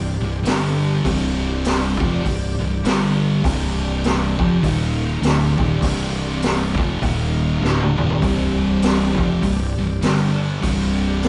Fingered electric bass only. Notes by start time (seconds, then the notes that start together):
Already playing: C1
0.21 C1
0.46 G1
1.05 C1
2.00 F1
2.24 C1
2.59 C1
2.84 G1
3.44 C1
4.39 F1
4.63 D#1
5.22 D1
5.58 D#1
5.83 C1
6.78 F1
7.02 D#1
7.62 D1
7.99 D#1
8.22 C1
9.18 F1
9.42 C1
9.77 C1
10.02 G1
10.62 C1